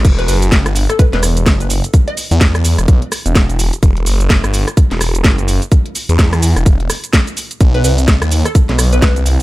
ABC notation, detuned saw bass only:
X:1
M:4/4
L:1/16
Q:"Swing 16ths" 1/4=127
K:Bphr
V:1 name="Detuned saw bass" clef=bass
E,,,2 F,,,3 G,,,2 z2 E,,,3 F,,,3 z | z3 E,,3 E,, E,,, B,,, z2 E,,,2 E,,,2 z | E,,,2 F,,,3 G,,,2 z2 E,,,3 F,,,3 z | z3 E,,3 E,, E,,, E,,,2 z6 |
B,,,2 C,,3 ^D,,2 z2 B,,,3 z4 |]